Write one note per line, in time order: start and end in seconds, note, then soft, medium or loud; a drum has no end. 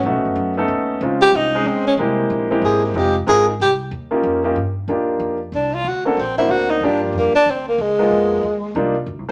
0.03 0.14 B1 medium
0.03 0.53 A3 medium
0.03 0.53 B3 medium
0.03 0.53 C#4 medium
0.03 0.53 D#4 medium
0.03 0.54 F#4 medium
0.14 0.25 A1 medium
0.25 0.35 F#1 medium
0.36 0.67 F#2 medium
0.57 0.99 A3 medium
0.57 0.99 B3 medium
0.57 0.99 C#4 medium
0.57 0.99 D#4 medium
0.57 1.00 A4 medium
0.68 1.00 D#2 medium
1.01 1.32 C#2 medium
1.01 1.50 G#3 medium
1.01 1.50 C4 medium
1.01 1.50 C#4 medium
1.01 1.50 D#4 medium
1.01 1.50 F4 medium
1.22 1.37 G4 loud
1.33 1.64 C2 medium
1.33 1.69 D#4 medium
1.54 1.96 G#3 medium
1.54 1.96 C4 medium
1.54 1.96 C#4 medium
1.54 1.96 D#4 medium
1.54 1.97 G#4 medium
1.65 1.97 D#2 medium
1.65 1.87 C4 medium
1.87 1.94 C#4 medium
1.97 2.29 C2 medium
1.97 2.46 G#3 medium
1.97 2.47 A#3 medium
1.97 2.47 C4 medium
1.97 2.47 E4 medium
1.97 2.47 G4 medium
2.30 2.61 A#1 medium
2.50 2.92 G#3 medium
2.50 2.93 A#3 medium
2.50 2.92 C4 medium
2.50 2.93 E4 medium
2.50 2.93 G4 medium
2.62 2.93 G#1 medium
2.62 2.82 G#4 medium
2.85 2.99 E4 medium
2.94 3.26 F1 medium
2.94 3.13 G#3 medium
2.94 3.13 C4 medium
2.94 3.13 D#4 medium
2.94 3.13 F4 medium
2.94 3.13 G4 medium
2.94 3.16 G4 medium
3.27 3.58 G#1 medium
3.27 3.45 G#3 medium
3.27 3.45 C4 medium
3.27 3.45 D#4 medium
3.27 3.45 F4 medium
3.27 3.46 G#4 loud
3.27 3.45 A#4 medium
3.48 3.54 D#4 soft
3.60 3.91 C2 medium
3.60 3.73 G4 medium
3.91 4.23 D#2 medium
4.11 4.41 A#3 medium
4.11 4.42 C#4 medium
4.11 4.42 D#4 medium
4.11 4.42 F4 medium
4.11 4.42 G4 medium
4.23 4.55 F2 medium
4.44 4.55 A#3 medium
4.44 4.55 C#4 medium
4.44 4.55 D#4 medium
4.44 4.55 F4 medium
4.44 4.55 G4 medium
4.56 4.87 G2 medium
4.88 5.19 D#2 medium
4.88 5.37 A#3 medium
4.88 5.37 D4 medium
4.88 5.37 D#4 medium
4.88 5.37 F4 medium
4.88 5.37 G4 medium
5.20 5.51 F2 medium
5.52 5.84 C2 medium
5.52 5.76 D4 medium
5.74 5.89 F4 medium
5.84 6.16 D2 medium
5.84 6.06 F#4 medium
6.05 6.21 A3 medium
6.05 6.16 A#3 medium
6.05 6.17 C4 medium
6.05 6.17 D4 medium
6.05 6.17 F#4 medium
6.05 6.17 A4 medium
6.17 6.48 A#1 medium
6.17 6.38 C4 medium
6.38 6.80 A#3 medium
6.38 6.80 C4 medium
6.38 6.80 D4 medium
6.38 6.52 E4 medium
6.38 6.80 F#4 medium
6.38 6.80 C5 medium
6.48 6.80 D2 medium
6.48 6.72 F#4 medium
6.70 6.86 D#4 medium
6.81 7.12 G2 medium
6.81 7.31 G3 medium
6.81 7.31 A#3 medium
6.81 7.31 D4 medium
6.81 7.31 F4 medium
6.81 7.31 G4 medium
6.85 7.03 D4 medium
7.04 7.19 F3 soft
7.13 7.32 F2 medium
7.17 7.34 A#3 medium
7.34 7.51 D4 loud
7.34 muted upright bass stroke soft
7.46 7.78 D2 medium
7.46 7.68 C4 medium
7.68 7.83 A#3 medium
7.78 8.10 C#2 medium
7.78 8.77 G#3 medium
7.98 8.41 G#3 medium
7.98 8.41 A#3 medium
7.98 8.41 B3 medium
7.98 8.41 D#4 medium
7.98 8.41 F4 medium
8.11 8.42 F2 medium
8.43 8.74 D#2 medium
8.75 9.06 C2 medium
8.75 8.94 G3 medium
8.75 8.94 A#3 medium
8.75 8.94 D4 medium
8.75 8.94 D#4 medium
8.75 8.94 F4 medium
9.06 9.18 D2 medium
9.18 9.28 C2 soft